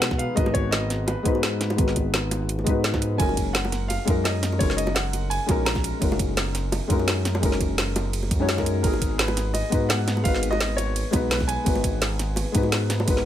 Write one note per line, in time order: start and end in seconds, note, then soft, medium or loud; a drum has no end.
0.00 0.27 B1 medium
0.00 0.34 G#3 medium
0.00 0.36 B3 medium
0.00 0.37 D#4 medium
0.00 0.38 F#4 medium
0.00 0.39 B4 loud
0.00 0.20 F#5 loud
0.00 snare loud
0.00 closed hi-hat medium
0.11 kick medium
0.11 snare soft
0.11 high bongo medium
0.18 0.35 F5 loud
0.18 closed hi-hat loud
0.34 1.16 G#1 loud
0.34 1.21 G#3 medium
0.34 1.23 B3 medium
0.34 1.23 D#4 medium
0.34 1.24 F#4 medium
0.34 0.55 D#5 loud
0.34 kick loud
0.34 closed hi-hat medium
0.39 1.25 B4 loud
0.46 high bongo medium
0.54 0.72 C#5 loud
0.54 kick medium
0.54 closed hi-hat medium
0.71 1.08 D#5 loud
0.71 snare loud
0.71 closed hi-hat medium
0.71 high bongo medium
0.90 snare soft
0.90 closed hi-hat loud
1.07 1.74 B4 medium
1.07 closed hi-hat medium
1.07 high bongo medium
1.23 1.77 G#2 medium
1.23 1.74 G#3 medium
1.23 1.75 B3 medium
1.23 1.76 D#4 medium
1.23 1.77 F#4 medium
1.23 kick loud
1.23 closed hi-hat medium
1.28 1.78 B4 loud
1.35 high bongo medium
1.43 snare loud
1.43 closed hi-hat medium
1.61 snare medium
1.61 closed hi-hat loud
1.70 high bongo medium
1.76 2.68 G#1 loud
1.76 2.63 G#3 medium
1.76 2.64 B3 medium
1.76 2.65 D#4 medium
1.76 2.65 F#4 medium
1.76 kick loud
1.76 closed hi-hat medium
1.81 2.66 B4 medium
1.88 snare soft
1.96 kick medium
1.96 closed hi-hat loud
1.96 high bongo soft
2.14 snare loud
2.14 closed hi-hat medium
2.31 closed hi-hat loud
2.31 high bongo medium
2.49 closed hi-hat medium
2.59 high bongo soft
2.64 3.18 G#2 loud
2.64 3.15 G#3 loud
2.64 3.17 B3 medium
2.64 3.18 D#4 medium
2.64 3.18 F#4 medium
2.64 kick loud
2.64 closed hi-hat medium
2.69 3.19 B4 loud
2.84 snare loud
2.84 closed hi-hat medium
2.94 kick medium
2.94 snare soft
2.94 high bongo medium
3.02 closed hi-hat medium
3.17 3.98 F#1 loud
3.17 4.03 G#3 medium
3.17 4.05 C#4 medium
3.17 4.06 D#4 medium
3.17 4.06 F#4 medium
3.17 3.52 G#5 loud
3.17 kick loud
3.17 closed hi-hat medium
3.17 ride medium
3.22 4.07 A#4 loud
3.29 high bongo soft
3.37 kick medium
3.37 closed hi-hat loud
3.37 ride medium
3.53 3.87 F#5 medium
3.53 snare loud
3.53 closed hi-hat medium
3.53 ride medium
3.65 high bongo medium
3.72 snare soft
3.72 closed hi-hat loud
3.72 ride medium
3.88 4.26 F5 loud
3.88 closed hi-hat medium
3.88 ride medium
3.88 high bongo medium
4.05 4.59 F#2 medium
4.05 4.56 G#3 loud
4.05 4.58 C#4 medium
4.05 4.59 D#4 medium
4.05 4.59 F#4 medium
4.05 kick loud
4.05 closed hi-hat loud
4.05 ride medium
4.10 4.60 A#4 loud
4.24 4.61 D#5 medium
4.24 snare loud
4.24 closed hi-hat medium
4.24 ride medium
4.24 high bongo medium
4.43 snare medium
4.43 closed hi-hat loud
4.43 ride medium
4.52 high bongo medium
4.58 5.39 F#1 loud
4.58 5.45 G#3 medium
4.58 5.46 C#4 medium
4.58 5.47 D#4 medium
4.58 5.47 F#4 medium
4.58 4.78 C#5 medium
4.58 kick loud
4.58 closed hi-hat medium
4.58 ride medium
4.63 5.48 A#4 loud
4.70 snare soft
4.77 4.96 D#5 medium
4.77 closed hi-hat loud
4.77 ride medium
4.87 high bongo medium
4.95 5.32 F#5 loud
4.95 snare loud
4.95 closed hi-hat medium
4.95 ride medium
5.13 closed hi-hat loud
5.13 ride medium
5.13 high bongo soft
5.30 5.67 G#5 loud
5.30 closed hi-hat medium
5.30 ride medium
5.46 5.92 A#1 medium
5.46 5.98 G#3 medium
5.46 5.99 C#4 medium
5.46 6.00 D#4 medium
5.46 6.00 F#4 medium
5.46 kick loud
5.46 closed hi-hat medium
5.46 ride soft
5.46 high bongo medium
5.51 6.01 A#4 loud
5.65 6.68 A#5 loud
5.65 snare loud
5.65 closed hi-hat medium
5.65 ride medium
5.75 kick medium
5.75 snare soft
5.75 high bongo medium
5.84 closed hi-hat medium
5.84 ride medium
5.99 6.80 F#1 loud
5.99 6.86 G#3 medium
5.99 6.87 C#4 medium
5.99 6.88 D#4 medium
5.99 6.89 F#4 medium
5.99 kick loud
5.99 closed hi-hat medium
5.99 ride medium
6.04 6.89 A#4 medium
6.12 high bongo medium
6.19 kick medium
6.19 closed hi-hat medium
6.19 ride soft
6.37 snare loud
6.37 closed hi-hat medium
6.37 ride medium
6.37 high bongo medium
6.55 snare soft
6.55 closed hi-hat medium
6.55 ride medium
6.72 closed hi-hat medium
6.72 ride medium
6.72 high bongo medium
6.88 7.42 F#2 medium
6.88 7.39 G#3 loud
6.88 7.40 C#4 medium
6.88 7.41 D#4 medium
6.88 7.42 F#4 medium
6.88 kick loud
6.88 closed hi-hat medium
6.88 ride soft
6.92 7.42 A#4 loud
6.99 high bongo medium
7.08 snare loud
7.08 closed hi-hat medium
7.08 ride medium
7.25 snare medium
7.25 closed hi-hat medium
7.25 ride medium
7.35 high bongo medium
7.40 8.33 F#1 loud
7.40 8.28 G#3 medium
7.40 8.29 C#4 medium
7.40 8.29 D#4 medium
7.40 8.30 F#4 medium
7.40 kick loud
7.40 closed hi-hat medium
7.40 ride medium
7.45 8.30 A#4 loud
7.52 snare soft
7.61 kick medium
7.61 closed hi-hat medium
7.61 ride medium
7.61 high bongo medium
7.78 snare loud
7.78 closed hi-hat medium
7.78 ride medium
7.96 closed hi-hat medium
7.96 ride medium
7.96 high bongo medium
8.13 closed hi-hat medium
8.13 ride medium
8.23 high bongo medium
8.31 8.83 F#2 loud
8.31 kick loud
8.31 closed hi-hat medium
8.31 ride soft
8.39 8.55 G#3 medium
8.39 8.56 C#4 medium
8.39 8.56 D#4 medium
8.39 8.56 F#4 medium
8.39 8.57 C#5 loud
8.49 snare loud
8.49 closed hi-hat medium
8.49 ride medium
8.57 8.80 G#3 medium
8.57 8.82 C#4 medium
8.57 8.82 D#4 medium
8.57 8.83 F#4 medium
8.57 8.83 A#4 loud
8.57 kick medium
8.57 snare soft
8.57 high bongo medium
8.66 closed hi-hat medium
8.66 ride medium
8.82 9.63 G#1 loud
8.82 9.68 G#3 medium
8.82 9.69 B3 medium
8.82 9.70 D#4 medium
8.82 9.71 F#4 medium
8.82 9.20 A#4 medium
8.82 kick loud
8.82 closed hi-hat medium
8.82 ride medium
8.86 9.72 G#4 loud
8.93 high bongo medium
9.02 kick medium
9.02 closed hi-hat medium
9.02 ride medium
9.18 9.55 B4 medium
9.18 snare loud
9.18 closed hi-hat medium
9.18 ride medium
9.28 high bongo medium
9.37 snare soft
9.37 closed hi-hat medium
9.37 ride medium
9.54 9.87 D#5 loud
9.54 closed hi-hat medium
9.54 ride medium
9.54 high bongo medium
9.70 10.24 G#2 medium
9.70 10.21 G#3 loud
9.70 10.23 B3 medium
9.70 10.23 D#4 medium
9.70 10.24 F#4 medium
9.70 kick loud
9.70 closed hi-hat medium
9.70 ride medium
9.74 10.24 B4 loud
9.89 10.22 F#5 loud
9.89 snare loud
9.89 closed hi-hat medium
9.89 ride medium
9.89 high bongo medium
10.08 snare medium
10.08 closed hi-hat medium
10.08 ride medium
10.17 high bongo medium
10.23 11.04 G#1 loud
10.23 11.09 G#3 medium
10.23 11.11 B3 medium
10.23 11.12 D#4 medium
10.23 11.12 F#4 medium
10.23 10.50 F5 loud
10.23 kick loud
10.23 closed hi-hat medium
10.23 ride medium
10.28 11.13 B4 loud
10.35 snare soft
10.43 closed hi-hat medium
10.43 ride medium
10.51 10.76 D#5 loud
10.51 high bongo medium
10.61 snare loud
10.61 closed hi-hat medium
10.61 ride medium
10.77 11.32 C#5 loud
10.77 closed hi-hat loud
10.77 ride medium
10.77 high bongo medium
10.96 closed hi-hat medium
10.96 ride medium
11.11 11.57 B1 medium
11.11 11.63 G#3 loud
11.11 11.64 B3 medium
11.11 11.64 D#4 medium
11.11 11.65 F#4 medium
11.11 kick loud
11.11 closed hi-hat medium
11.11 ride medium
11.11 high bongo medium
11.16 11.66 B4 loud
11.30 11.35 B4 loud
11.30 snare loud
11.30 closed hi-hat medium
11.30 ride medium
11.40 kick medium
11.40 snare soft
11.40 high bongo medium
11.48 13.25 G#5 loud
11.48 closed hi-hat medium
11.48 ride medium
11.64 12.45 G#1 loud
11.64 12.51 G#3 medium
11.64 12.52 B3 medium
11.64 12.53 D#4 medium
11.64 12.54 F#4 medium
11.64 kick loud
11.64 closed hi-hat medium
11.64 ride medium
11.69 12.54 B4 medium
11.75 high bongo medium
11.84 kick medium
11.84 closed hi-hat medium
11.84 ride medium
12.01 snare loud
12.01 closed hi-hat medium
12.01 ride medium
12.01 high bongo soft
12.19 snare soft
12.19 closed hi-hat loud
12.19 ride medium
12.36 closed hi-hat medium
12.36 ride medium
12.36 high bongo medium
12.52 13.06 G#2 medium
12.52 13.04 G#3 loud
12.52 13.05 B3 medium
12.52 13.06 D#4 medium
12.52 13.06 F#4 medium
12.52 kick loud
12.52 closed hi-hat loud
12.52 ride medium
12.57 13.07 B4 loud
12.63 high bongo medium
12.72 snare loud
12.72 closed hi-hat medium
12.72 ride medium
12.90 snare medium
12.90 closed hi-hat loud
12.90 ride medium
13.00 high bongo medium
13.05 13.25 G#1 loud
13.05 13.25 G#3 medium
13.05 13.25 B3 medium
13.05 13.25 D#4 medium
13.05 13.25 F#4 medium
13.05 kick loud
13.05 closed hi-hat medium
13.05 ride medium
13.10 13.25 B4 loud
13.17 snare soft